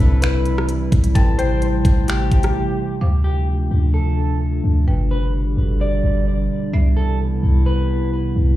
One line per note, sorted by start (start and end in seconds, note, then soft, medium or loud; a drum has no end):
0.00 0.88 C2 loud
0.00 2.98 C3 medium
0.00 2.98 E3 medium
0.00 2.98 G3 medium
0.00 1.14 C4 medium
0.00 1.15 C4 medium
0.00 2.98 E4 medium
0.00 1.14 B4 medium
0.00 0.92 E5 medium
0.00 1.14 E5 medium
0.00 0.69 B5 loud
0.22 0.66 B4 medium
0.22 finger snap loud
0.22 closed hi-hat medium
0.46 closed hi-hat medium
0.58 cross-stick loud
0.69 closed hi-hat medium
0.92 1.14 C2 loud
0.92 kick loud
0.92 closed hi-hat medium
1.04 closed hi-hat medium
1.15 1.82 A1 loud
1.15 3.00 A3 medium
1.15 3.00 C4 medium
1.15 3.00 A4 medium
1.15 3.00 G5 medium
1.15 2.55 A5 loud
1.15 kick loud
1.15 closed hi-hat medium
1.39 1.61 C5 loud
1.39 2.78 G5 medium
1.39 closed hi-hat medium
1.62 3.02 C5 medium
1.62 closed hi-hat medium
1.85 2.30 A1 loud
1.85 kick loud
1.85 closed hi-hat medium
2.08 2.97 G4 medium
2.08 finger snap loud
2.08 closed hi-hat medium
2.32 2.54 A1 loud
2.32 kick medium
2.32 closed hi-hat medium
2.43 cross-stick loud
2.43 closed hi-hat medium
3.01 3.68 D2 loud
3.01 4.86 C3 medium
3.01 4.86 F3 medium
3.01 4.86 A3 medium
3.01 6.70 D4 medium
3.01 4.86 F4 medium
3.01 4.86 C5 medium
3.01 4.86 F5 medium
3.01 6.70 D6 medium
3.24 3.47 G4 medium
3.71 4.60 D2 loud
3.94 4.38 A4 medium
4.64 4.86 D2 loud
4.87 5.54 G1 loud
4.87 6.72 B2 medium
4.87 6.72 D3 medium
4.87 8.56 G3 medium
4.87 6.72 G4 medium
4.87 6.72 B4 medium
4.87 6.72 G5 medium
5.11 5.33 B4 medium
5.57 6.02 G1 loud
5.81 6.25 D5 medium
6.04 6.48 G1 medium
6.73 7.40 C2 loud
6.73 8.56 C3 medium
6.73 8.56 E3 medium
6.73 8.56 B3 medium
6.73 8.56 E4 medium
6.73 8.56 E5 medium
6.73 8.56 C7 medium
6.97 7.19 A4 medium
7.43 8.33 C2 loud
7.66 8.10 B4 medium
8.36 8.56 C2 loud